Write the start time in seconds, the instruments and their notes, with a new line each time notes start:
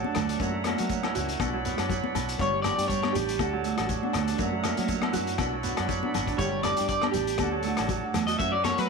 Already playing: harp F#3 A3 B3, tonewheel organ D5 F#5 A5
0.04 nylon-string guitar D4, harp D4, high conga
0.15 fingered electric bass D2, harp A3, cross-stick, closed hi-hat, low conga, low agogo, shekere
0.29 harp D4, closed hi-hat
0.38 fingered electric bass F#2, nylon-string guitar E3 A#3 C#4 F#4, harp F#3, tonewheel organ E5 A#5, kick, closed hi-hat
0.42 shekere
0.53 harp F#3
0.64 nylon-string guitar E3 A#3 C#4 F#4, harp A#3, cross-stick, closed hi-hat, high conga, low agogo
0.78 fingered electric bass F#3, nylon-string guitar A#3 C#4 F#4, closed hi-hat
0.89 harp F#3, kick, closed hi-hat, shekere
1.03 harp E4, cross-stick, high conga, low agogo
1.14 fingered electric bass C#2, nylon-string guitar E3 C#4 F#4, harp F#4, muted nylon-string guitar stroke, closed hi-hat, shekere
1.29 closed hi-hat
1.39 fingered electric bass B1, nylon-string guitar F#3 B3 D4 F#4, tonewheel organ D5 B5, kick, cross-stick, closed hi-hat, high conga, low agogo, shekere
1.53 harp F#3
1.65 nylon-string guitar F#3 B3 D4, harp B3, muted nylon-string guitar stroke, closed hi-hat, shekere
1.77 fingered electric bass F#2, harp F#3, nylon-string guitar B3 D4 F#4, cross-stick, closed hi-hat, low agogo
1.90 harp F#3, kick, closed hi-hat, low conga, shekere
2.02 nylon-string guitar B3 D4, harp D4, high conga
2.15 fingered electric bass B1, harp B3, closed hi-hat, low conga, low agogo, shekere
2.29 closed hi-hat
2.38 fingered electric bass G1, harp G3, nylon-string guitar B3 D4 G4, clean electric guitar C#5, tonewheel organ G5, kick, closed hi-hat, shekere
2.53 harp G3
2.62 nylon-string guitar B3 D4 G4, harp B3, clean electric guitar D5, cross-stick, closed hi-hat, high conga, low agogo, shekere
2.77 fingered electric bass G2, nylon-string guitar D4 G4, closed hi-hat
2.88 harp G3, clean electric guitar C#5, kick, closed hi-hat, shekere
3.02 harp D4, cross-stick, high conga, low agogo
3.12 fingered electric bass A1, nylon-string guitar B3 D4 G4, harp G4, closed hi-hat, low conga, shekere
3.29 closed hi-hat
3.38 fingered electric bass D2, nylon-string guitar A3 D4 F#4, tonewheel organ F#5 A5, kick, cross-stick, closed hi-hat, high conga, low agogo, shekere
3.53 harp F#3
3.64 harp A3, nylon-string guitar D4 F#4, muted nylon-string guitar stroke, closed hi-hat
3.77 fingered electric bass A1, harp F#3, nylon-string guitar D4 F#4, cross-stick, closed hi-hat, low agogo
3.88 harp F#3, kick, closed hi-hat, low conga, shekere
4.02 harp D4, nylon-string guitar D4 F#4, high conga
4.13 fingered electric bass D2, harp A3, cross-stick, closed hi-hat, low agogo, shekere
4.28 harp D4, closed hi-hat
4.38 fingered electric bass F#2, nylon-string guitar E3 A#3 C#4 F#4, harp F#3, tonewheel organ E5 A#5, kick, closed hi-hat, shekere
4.52 harp F#3
4.63 nylon-string guitar E3 A#3 C#4 F#4, harp A#3, cross-stick, closed hi-hat, low conga, low agogo, shekere
4.77 fingered electric bass F#3, nylon-string guitar A#3 C#4 F#4, closed hi-hat, shekere
4.88 harp F#3, kick, closed hi-hat, shekere
5.02 harp E4, cross-stick, high conga, low agogo
5.13 fingered electric bass F#2, nylon-string guitar A#3 C#4 F#4, harp F#4, closed hi-hat, low conga, shekere
5.27 closed hi-hat
5.38 fingered electric bass B1, nylon-string guitar F#3 B3 D4 F#4, tonewheel organ D5 F#5 B5, kick, cross-stick, closed hi-hat, high conga, low agogo, shekere
5.53 harp F#3
5.63 nylon-string guitar F#3 B3 D4, harp B3, closed hi-hat, shekere
5.67 nylon-string guitar F#4
5.77 fingered electric bass F#2, harp F#3, nylon-string guitar D4, cross-stick, closed hi-hat, low agogo
5.81 nylon-string guitar B3
5.88 harp F#3, kick, closed hi-hat, low conga, shekere
6.02 harp D4, nylon-string guitar D4 F#4, high conga
6.07 nylon-string guitar B3
6.13 fingered electric bass G#1, harp B3, closed hi-hat, low conga, low agogo, shekere
6.26 harp D4, kick, closed hi-hat, shekere
6.37 fingered electric bass G1, harp G3, nylon-string guitar B3 D4, clean electric guitar C#5, tonewheel organ G5, kick, closed hi-hat, shekere
6.41 nylon-string guitar G4
6.51 harp G3
6.62 harp B3, nylon-string guitar B3 D4 G4, clean electric guitar D5, cross-stick, closed hi-hat, high conga, low agogo, shekere
6.77 fingered electric bass G2, nylon-string guitar D4 G4, closed hi-hat
6.88 clean electric guitar D5, kick, closed hi-hat, shekere
7.01 harp D4, cross-stick, high conga, low agogo
7.11 nylon-string guitar D4, harp G4, muted nylon-string guitar stroke, closed hi-hat, low conga, shekere
7.16 fingered electric bass A1, nylon-string guitar G4
7.27 closed hi-hat
7.38 fingered electric bass D2, nylon-string guitar A3 D4, tonewheel organ A5, kick, cross-stick, closed hi-hat, high conga, low agogo, shekere
7.42 nylon-string guitar F#4, tonewheel organ F#5
7.51 harp F#3
7.63 harp A3, nylon-string guitar D4, muted nylon-string guitar stroke, closed hi-hat
7.67 nylon-string guitar F#4
7.77 fingered electric bass A1, harp F#3, nylon-string guitar F#4, cross-stick, closed hi-hat, low agogo
7.82 nylon-string guitar D4
7.88 harp F#3, kick, closed hi-hat, low conga, shekere
8.03 nylon-string guitar D4 F#4
8.14 fingered electric bass E2, harp A3, cross-stick, closed hi-hat, low conga, low agogo, shekere
8.27 harp F#4, clean electric guitar D#5, closed hi-hat
8.38 fingered electric bass F#2, nylon-string guitar E3 A#3 C#4 F#4, harp F#3, clean electric guitar E5, tonewheel organ E5 A#5, kick, closed hi-hat, shekere
8.52 harp F#3, clean electric guitar D5
8.63 nylon-string guitar E3 A#3 C#4, harp A#3, clean electric guitar C#5, cross-stick, closed hi-hat, high conga, low agogo, shekere
8.67 nylon-string guitar F#4
8.76 fingered electric bass F#3, nylon-string guitar A#3 C#4 F#4, clean electric guitar B4, closed hi-hat